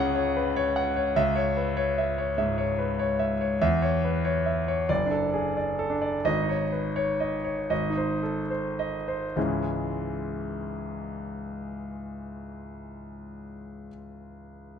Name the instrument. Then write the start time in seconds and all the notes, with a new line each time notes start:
grand piano
Already playing: C#2 C#3 B4 C#5 F#5
0.15 C#5
0.37 B4
0.56 C#5
0.76 F#5
0.96 C#5
1.16 C#2 E5
1.36 C#5
1.57 B4
1.77 C#5
1.98 E5
2.18 C#5
2.38 G#2 E5
2.58 C#5
2.78 B4
2.99 C#5
3.19 E5
3.41 C#5
3.61 E2 E5
3.82 C#5
4.04 B4
4.25 C#5
4.46 E5
4.68 C#5
4.89 F#1 D5
5.06 D4
5.11 A4
5.34 G#4
5.57 D5
5.79 A4
5.90 D4
6.02 D5
6.25 G#1 D#5
6.42 D#4
6.49 C#5
6.72 B4
6.96 C#5
7.20 D#5
7.45 C#5
7.70 G#1 D#5
7.90 D#4
7.97 C5
8.23 A4
8.50 C5
8.79 D#5
9.08 C5
9.36 C#2 G#2 E3 G#3 C#4 E4